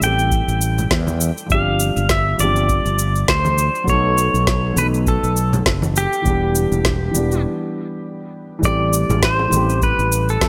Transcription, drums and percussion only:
0.01 high conga, cabasa
0.19 cabasa
0.31 kick, cabasa
0.48 cabasa
0.61 cabasa
0.78 low conga, cabasa
0.91 kick, snare, cabasa
1.07 high conga, cabasa
1.21 cabasa
1.38 cabasa
1.50 kick, cabasa
1.80 cabasa
1.97 cabasa
2.09 kick, snare, cabasa
2.39 high conga, cabasa
2.56 cabasa
2.69 kick, cabasa
2.86 cabasa
2.99 cabasa
3.16 cabasa
3.28 kick, snare, cabasa
3.45 high conga, cabasa
3.58 cabasa
3.75 cabasa
3.88 kick, cabasa
4.18 cabasa
4.35 cabasa
4.47 kick, snare, cabasa
4.76 high conga, cabasa
4.94 cabasa
5.07 kick, cabasa
5.24 cabasa
5.36 cabasa
5.53 low conga, cabasa
5.66 kick, snare, cabasa
5.82 high conga, cabasa
5.96 cabasa
6.13 cabasa
6.25 kick, cabasa
6.55 cabasa
6.72 cabasa
6.85 kick, snare, cabasa
7.14 high conga, cabasa
7.32 cabasa
8.63 kick, cabasa
8.93 cabasa
9.10 high bongo, low conga, cabasa
9.23 kick, snare, cabasa
9.39 high bongo
9.51 high conga, cabasa
9.69 cabasa
9.82 kick, cabasa
9.99 cabasa
10.12 cabasa
10.29 cabasa
10.41 kick, snare, cabasa

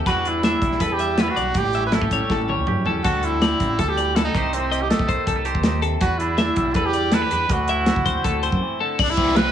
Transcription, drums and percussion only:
0.06 kick, closed hi-hat
0.25 closed hi-hat
0.43 snare, closed hi-hat
0.62 kick, closed hi-hat
0.72 snare
0.80 kick, closed hi-hat
0.99 closed hi-hat
1.18 snare, closed hi-hat
1.37 closed hi-hat
1.54 kick, closed hi-hat
1.64 snare
1.73 closed hi-hat
1.92 snare, closed hi-hat
2.02 kick
2.11 kick, closed hi-hat
2.30 kick, snare
2.49 high tom
2.67 mid tom
2.86 floor tom
3.04 kick, closed hi-hat, splash
3.23 closed hi-hat
3.42 snare, closed hi-hat
3.60 kick, closed hi-hat
3.79 kick, closed hi-hat
3.98 closed hi-hat
4.16 snare, closed hi-hat
4.35 kick, closed hi-hat
4.53 closed hi-hat
4.72 closed hi-hat
4.90 snare, closed hi-hat
4.99 kick, snare
5.09 kick, closed hi-hat
5.27 kick, closed hi-hat
5.45 closed hi-hat
5.55 kick
5.63 snare, closed hi-hat
5.82 closed hi-hat
6.01 kick, closed hi-hat
6.20 closed hi-hat
6.38 snare, closed hi-hat
6.56 kick, closed hi-hat
6.74 kick, closed hi-hat
6.93 closed hi-hat
7.12 snare, closed hi-hat
7.31 closed hi-hat
7.49 kick, closed hi-hat
7.68 closed hi-hat
7.86 snare, closed hi-hat
7.96 kick
8.06 kick, closed hi-hat
8.24 kick, closed hi-hat
8.43 closed hi-hat
8.52 kick
8.99 kick, crash
9.17 kick, ride
9.28 snare
9.36 snare, ride

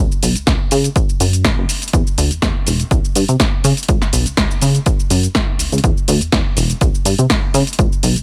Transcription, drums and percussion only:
0.12 cabasa
0.23 open hi-hat, cabasa
0.35 closed hi-hat, cabasa
0.47 kick, snare, closed hi-hat, cabasa
0.71 open hi-hat, cabasa
0.84 closed hi-hat, cabasa
0.96 kick, closed hi-hat, cabasa
1.09 cabasa
1.20 open hi-hat, cabasa
1.33 closed hi-hat, cabasa
1.44 kick, snare, closed hi-hat, cabasa
1.69 open hi-hat, cabasa
1.82 closed hi-hat, cabasa
1.88 closed hi-hat
1.93 kick, closed hi-hat, cabasa
2.07 cabasa
2.18 open hi-hat, cabasa
2.31 closed hi-hat, cabasa
2.42 kick, snare, closed hi-hat, cabasa
2.67 open hi-hat, cabasa
2.80 closed hi-hat, cabasa
2.91 kick, closed hi-hat, cabasa
3.05 cabasa
3.15 open hi-hat, cabasa
3.28 closed hi-hat, cabasa
3.40 kick, snare, closed hi-hat, cabasa
3.64 open hi-hat, cabasa
3.77 closed hi-hat, cabasa
3.83 closed hi-hat
3.88 kick, closed hi-hat, cabasa
4.02 snare, cabasa
4.13 open hi-hat, cabasa
4.26 closed hi-hat, cabasa
4.37 kick, snare, closed hi-hat, cabasa
4.51 cabasa
4.62 open hi-hat, cabasa
4.75 closed hi-hat, cabasa
4.86 kick, closed hi-hat, cabasa
5.00 cabasa
5.10 open hi-hat, cabasa
5.23 closed hi-hat, cabasa
5.35 kick, snare, closed hi-hat, cabasa
5.59 open hi-hat, cabasa
5.72 closed hi-hat, cabasa
5.78 closed hi-hat
5.84 kick, closed hi-hat, cabasa
5.97 cabasa
6.08 open hi-hat, cabasa
6.21 closed hi-hat, cabasa
6.32 kick, snare, closed hi-hat, cabasa
6.57 open hi-hat, cabasa
6.70 closed hi-hat, cabasa
6.81 kick, closed hi-hat, cabasa
6.95 cabasa
7.05 open hi-hat, cabasa
7.18 closed hi-hat, cabasa
7.30 kick, snare, closed hi-hat, cabasa
7.54 open hi-hat, cabasa
7.67 closed hi-hat, cabasa
7.73 closed hi-hat
7.79 kick, closed hi-hat, cabasa
7.92 cabasa
8.03 open hi-hat, cabasa
8.16 closed hi-hat, cabasa

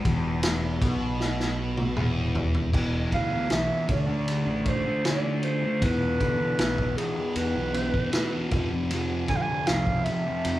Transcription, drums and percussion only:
0.05 kick, ride
0.43 snare, ride
0.82 kick, ride
1.20 snare
1.40 snare
1.77 high tom
1.97 mid tom
2.35 floor tom
2.54 floor tom
2.73 kick, crash
3.12 kick, ride
3.50 snare, ride
3.89 kick, ride
4.28 ride
4.66 kick, ride
5.05 snare, ride
5.43 ride
5.82 kick, ride
6.20 kick, ride
6.59 snare, ride
6.78 kick
6.98 ride
7.36 ride
7.74 ride
7.94 kick
8.13 snare, ride
8.51 kick, ride
8.91 ride
9.28 kick, snare, ride
9.67 snare, ride
9.87 kick
10.06 ride
10.45 ride

